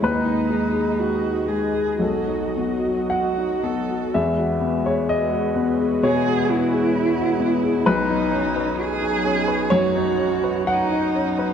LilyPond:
<<
  \new Staff \with { instrumentName = "Cello" } { \time 4/4 \key e \major \tempo 4 = 63 dis'4 fis'8 gis'8 fis'4 fis'8 a'8 | r2 gis'8 e'4. | dis'4 gis'4 fis'4 dis'4 | }
  \new Staff \with { instrumentName = "Upright piano" } { \time 4/4 \key e \major << { b'2 a'4 fis''4 | e''8. cis''16 dis''4 cis''2 | b'2 cis''4 fis''4 | } \\ { dis,16 dis'16 gis16 gis'8 dis'16 gis16 gis'16 b,,16 dis'16 b16 fis'8 dis'16 b16 fis'16 | e,16 fis'16 b16 gis'8 fis'16 b16 gis'16 b,16 fis'16 b16 gis'8 fis'16 b16 gis'16 | b,,16 dis'16 cis'16 b'8 dis'16 cis'16 b'16 fis,16 dis'16 cis'16 b'8 dis'16 cis'16 b'16 | } >> }
  \new Staff \with { instrumentName = "Analog synth pad" } { \time 4/4 \key e \major << { dis''1 | b'1 | cis''1 | } \\ { <gis dis'>2 <fis fis'>2 | <gis fis'>1 | <fis dis'>1 | } >> }
>>